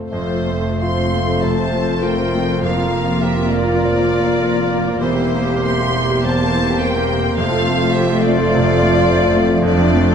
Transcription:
Already playing: C3 A3 C4 F4 A4
0.09 F1 F2 A3 C4 F4 C5
0.14 A3 F4
0.30 C4
0.46 A3
0.64 C4
0.80 F4 F5 C6
0.97 C4
1.14 A3
1.28 C4
1.42 C3 C5 A5
1.58 C4
1.72 A3
1.87 C4
2.02 F4 A#4 G5
2.17 C4
2.34 A3
2.49 C4
2.62 F2 A#3 A#4 F5
2.66 A#3
2.77 F4
2.91 A#3
3.05 F4
3.21 G4 A#4 E5
3.35 F4
3.51 A#3 F4 D5
3.68 F4
3.83 F3
3.98 F4
4.14 A#3
4.27 F4
4.42 A#4
4.57 F4
4.73 A#3
4.86 F4
4.99 E1 E2 C4 E4 G4 C5
5.15 G4
5.35 A#3
5.49 G4
5.65 C5 E5 C6
5.81 G4
5.97 A#3
6.11 G4
6.24 E2 C5 A5
6.40 A#3
6.54 E3
6.70 G4
6.82 A#4 C5 G5
6.97 G4
7.12 A#3
7.24 G4
7.36 F1 F2 A3 F4 F5
7.41 A3 A4
7.51 F4
7.65 A3
7.82 F4
7.94 G4 C5 E5
8.09 F4
8.22 A3 F4 D5
8.38 F4
8.55 C3
8.67 F4
8.82 A3
8.96 F4
9.08 C5
9.23 F4
9.35 A3
9.49 F4
9.62 F1 F2 A3 C4 D4 F4 D5
9.66 F2 C5
9.81 D4
9.94 A3 C4 D4
10.12 D4

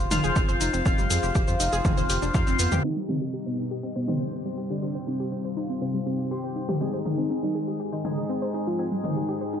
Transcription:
0.11 F1 D#4 F4 C5 F5, open hi-hat, mid tom, shaker
0.24 F1 G#4, shaker
0.36 F1 C4, kick, shaker
0.49 F1 C5, shaker
0.61 F1 D#4, open hi-hat, shaker
0.73 F1 C4, shaker
0.85 F1 C4 F4 C5 F5, kick, shaker
0.98 F1 G3, shaker
1.10 F2 G#4, open hi-hat, shaker
1.23 F1 G4, shaker
1.35 F1 G4, kick, shaker
1.48 F2 C5, shaker
1.60 F1 D#4, open hi-hat, shaker
1.73 F1 G#4, shaker
1.85 F1 C4, kick, mid tom, shaker
1.97 D#1 C5, shaker
2.10 F1 G4, open hi-hat, shaker
2.22 F1 D4, shaker
2.34 F2 D#4 F4 C5 F5, kick, shaker
2.47 F1 C4, shaker
2.59 F2 B3, open hi-hat, shaker
2.72 F2 G4, mid tom, shaker
2.84 G3 C4 D#4 G4 D#5 G5, downlifter
2.97 G3
3.09 C4 G4, mid tom, shaker
3.21 G4, shaker
3.34 G4, shaker
3.46 B3 C5
3.58 D#4, shaker
3.71 G4, shaker
3.83 C4, shaker
3.96 B3 C5
4.08 C4 D#4 G4 C5, mid tom, shaker
4.21 C4, shaker
4.33 C4, shaker
4.45 G3, shaker
4.58 G4, shaker
4.70 D4 G4, shaker
4.82 C4 G4 C5 F5, shaker
4.95 C5
5.07 C4 D#4, shaker
5.20 G4, shaker
5.32 C4, shaker
5.45 C5
5.57 D#4, shaker
5.69 C4, shaker
5.82 C4, shaker
5.94 G3
6.06 C4 G4, shaker
6.19 G4, shaker
6.31 C4 G4 C5, shaker
6.44 C5, shaker
6.56 D#4, shaker
6.69 G4, mid tom, shaker
6.81 G#3 C4 D#4 G4 G#4 C5, shaker
6.93 C5
7.05 D#4, mid tom, shaker
7.18 C4, shaker
7.30 C4, shaker
7.43 G3 D#4
7.55 G#4, shaker
7.68 G4, shaker
7.80 G4, shaker
7.93 D#4 C5
8.05 G#3 D#4 G#4, mid tom, shaker
8.17 G#4, shaker
8.29 C4, shaker
8.42 C5, shaker
8.54 D#4, shaker
8.67 C4 F4, shaker
8.79 G#3 C4 D#4 G#4, shaker
8.92 G3
9.04 D#4 G#4, mid tom, shaker
9.16 G4, shaker
9.29 G4, shaker
9.41 C5
9.53 D#4, shaker

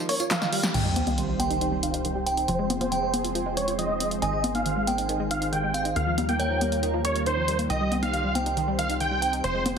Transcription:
0.09 A#3 C#5, open hi-hat
0.20 F4, closed hi-hat, tambourine
0.31 F3 F5, snare, clap, closed hi-hat, tambourine
0.41 D#3, snare, tambourine
0.52 G3, open hi-hat
0.63 G4, snare, tambourine
0.74 C2 D#3 G3 C4 G4 C5 D#5 G5, closed hi-hat, crash, sub drop
0.85 G3
0.96 C4, closed hi-hat, high conga
1.07 D#4 F5, closed hi-hat, high conga
1.18 D#3, closed hi-hat
1.29 G3
1.40 C4 G5, closed hi-hat, high conga
1.50 D#4, closed hi-hat
1.61 D#3, closed hi-hat
1.72 G3
1.83 D#3 F5, closed hi-hat
1.94 D#4, closed hi-hat
2.04 D#3 G5, closed hi-hat
2.15 G3
2.26 C4 G5, closed hi-hat
2.37 D#4, closed hi-hat
2.48 F1 F3 G#3 G#4 C5, closed hi-hat
2.59 G#3
2.70 C4, closed hi-hat, high conga
2.81 F4 C5, closed hi-hat, high conga
2.92 F3 G5, closed hi-hat
3.02 G#3
3.13 C4, closed hi-hat, high conga
3.24 F4, closed hi-hat
3.35 F3, closed hi-hat
3.46 G#3
3.57 F3 C#5, closed hi-hat
3.68 F4, closed hi-hat
3.79 F3 D#5, closed hi-hat
3.89 G#3
4.00 C4, closed hi-hat
4.11 F4, closed hi-hat
4.22 G#1 D#3 G#4 D#5 G#5, closed hi-hat
4.33 G#3
4.44 C4, closed hi-hat, high conga
4.55 D#4 F5, closed hi-hat, high conga
4.66 D#3, closed hi-hat
4.76 G#3
4.87 C4 G5, closed hi-hat, high conga
4.98 D#4, closed hi-hat
5.09 D#3, closed hi-hat
5.20 G#3
5.31 D#3 F5, closed hi-hat
5.42 D#4, closed hi-hat
5.52 D#3 G5, closed hi-hat
5.63 G#3
5.74 C4 F5, closed hi-hat
5.85 D#4, closed hi-hat
5.96 D#2 D#3 G3 A#3 F4 A#4 F5, closed hi-hat
6.07 F3
6.18 G3, closed hi-hat, high conga
6.29 A#3 G5, closed hi-hat, high conga
6.39 D#3 C#5, closed hi-hat
6.50 F3
6.61 G3, closed hi-hat, high conga
6.72 A#3, closed hi-hat
6.83 D#3, closed hi-hat
6.94 F3
7.05 D#3 C#5, closed hi-hat
7.15 A#3, closed hi-hat
7.26 D#3 C5, closed hi-hat
7.37 F3
7.48 G3, closed hi-hat
7.59 A#3, closed hi-hat
7.70 C2 D#3 C4 G4 C5 D#5 G5, closed hi-hat
7.81 G3
7.92 C4, closed hi-hat, high conga
8.03 D#4 F5, closed hi-hat, high conga
8.13 D#3, closed hi-hat
8.24 G3
8.35 C4 G5, closed hi-hat, high conga
8.46 D#4, closed hi-hat
8.57 D#3, closed hi-hat
8.68 G3
8.79 D#3 F5, closed hi-hat
8.90 D#4, closed hi-hat
9.00 D#3 G5, closed hi-hat
9.11 G3
9.22 C4 G5, closed hi-hat
9.33 D#4, closed hi-hat
9.44 F1 F3 G#3 G#4 C5, closed hi-hat
9.55 G#3
9.66 C4, closed hi-hat, high conga

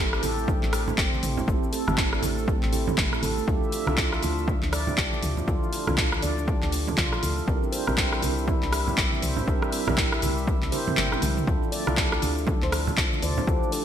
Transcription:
Already playing: G1 A3 C4 E4 G4 A4
0.13 cross-stick, shaker
0.22 A1 A4, open hi-hat, muted conga, high conga, shaker
0.37 A3, shaker
0.47 D4, kick, high conga, low conga, shaker
0.63 A1, clap, muted conga, shaker
0.72 A3, cross-stick, open hi-hat, shaker
0.88 high conga, low conga, shaker
0.98 G1 C4, kick, clap, muted conga, shaker
1.13 high conga, shaker
1.23 A1 E4, mid tom, open hi-hat, shaker
1.37 muted conga, low conga, shaker
1.47 A1 A3 C4 E4 G4 A4, kick, shaker
1.63 shaker
1.73 A4, open hi-hat, shaker
1.87 G1 A3 C4 E4 G4 A4, cross-stick, mid tom, muted conga, high conga, low conga, shaker
1.97 D4, kick, clap, shaker
2.13 cross-stick, shaker
2.22 A1 A3, open hi-hat, high conga, low conga, shaker
2.38 shaker
2.48 C4, kick, shaker
2.63 A1, clap, muted conga, high conga, shaker
2.72 C4 E4 G4 A4, open hi-hat, high conga, shaker
2.88 mid tom, low conga, shaker
2.97 G1 A3, kick, clap, mid tom, muted conga, high conga, shaker
3.13 cross-stick, shaker
3.23 A1 A4, open hi-hat, high conga, shaker
3.38 A3, muted conga, shaker
3.47 D2 D3 F3 D4 E4 F4 G4 A4 E5, kick, shaker
3.63 shaker
3.72 D4, open hi-hat, shaker
3.87 C2 D4 E4 F4 A4, cross-stick, muted conga, high conga, shaker
3.97 F4, kick, clap, shaker
4.13 cross-stick, shaker
4.22 D2 A4, open hi-hat, muted conga, high conga, shaker
4.38 shaker
4.48 D4, kick, high conga, low conga, shaker
4.62 D2 D4, clap, muted conga, shaker
4.73 D5, cross-stick, open hi-hat, shaker
4.87 D4, high conga, low conga, shaker
4.97 C2 G4, kick, clap, muted conga, shaker
5.12 high conga, shaker
5.23 D2 D4, mid tom, open hi-hat, shaker
5.37 muted conga, low conga, shaker
5.47 D2 D4 E4 F4 A4, kick, shaker
5.63 shaker
5.72 A4, open hi-hat, shaker
5.87 C2 D4 E4 F4 A4, cross-stick, mid tom, muted conga, high conga, low conga, shaker
5.97 D4, kick, clap, shaker
6.12 D4, cross-stick, shaker
6.22 D2 D5, open hi-hat, high conga, shaker
6.37 D4, shaker
6.48 G4, kick, shaker
6.62 D2, clap, muted conga, high conga, shaker
6.72 D4, open hi-hat, high conga, shaker
6.87 mid tom, low conga, shaker
6.98 C2 F4, kick, clap, mid tom, muted conga, high conga, shaker
7.12 cross-stick, shaker
7.23 D2 A4, open hi-hat, high conga, shaker
7.38 muted conga, shaker
7.48 C2 C3 G3 C4 D4 E4 G4 A#4 E5, kick, shaker
7.63 C4, shaker
7.72 C5, open hi-hat, shaker
7.87 A#1 C4 D4 E4 G4 A#4, cross-stick, muted conga, high conga, shaker
7.97 E4, kick, clap, shaker
8.12 cross-stick, shaker
8.22 C2 C4, open hi-hat, muted conga, high conga, shaker
8.38 shaker
8.47 E4, kick, high conga, low conga, shaker
8.62 C2, clap, muted conga, shaker
8.73 G4, cross-stick, open hi-hat, shaker
8.87 high conga, low conga, shaker
8.97 A#1 C4, kick, clap, muted conga, shaker
9.12 C4, high conga, shaker
9.22 C2 C5, mid tom, open hi-hat, shaker
9.36 C4, muted conga, low conga, shaker
9.47 C2 D4 E4 G4 A#4, kick, shaker
9.62 cross-stick, shaker
9.72 C4, open hi-hat, shaker
9.87 A#1 D4 E4 G4 A#4, cross-stick, mid tom, muted conga, high conga, low conga, shaker
9.97 E4, kick, clap, shaker
10.12 cross-stick, shaker
10.22 C2 G4, open hi-hat, high conga, low conga, shaker
10.38 shaker
10.47 C4, kick, shaker
10.62 C2 C4, clap, muted conga, high conga, shaker
10.72 D4 E4 G4 A#4 C5, open hi-hat, high conga, shaker
10.87 C4, mid tom, low conga, shaker
10.97 G1 E4, clap, mid tom, high tom, muted conga, high conga, shaker
11.12 cross-stick, high tom, shaker
11.22 C2 C4, open hi-hat, mid tom, high conga, shaker
11.37 mid tom, muted conga, shaker
11.47 D2 D3 F3 A3 D4 E4 F4 A4, kick, shaker
11.62 D4, shaker
11.72 D5, open hi-hat, shaker
11.87 C2 D4 E4 F4 A4, cross-stick, muted conga, high conga, shaker
11.97 G4, kick, clap, shaker
12.12 cross-stick, shaker
12.22 D2 D4, open hi-hat, muted conga, high conga, shaker
12.38 shaker
12.47 A4, kick, high conga, low conga, shaker
12.62 D2 C5, clap, muted conga, shaker
12.72 A4, cross-stick, open hi-hat, shaker
12.87 high conga, low conga, shaker
12.97 C2 D4, kick, clap, muted conga, shaker
13.12 D4, high conga, shaker
13.22 D2 C5 D5, mid tom, open hi-hat, shaker
13.37 D4, muted conga, low conga, shaker
13.47 D2 D4 E4 F4 G4 A4, kick, shaker
13.63 shaker
13.72 D4 A4, open hi-hat, shaker

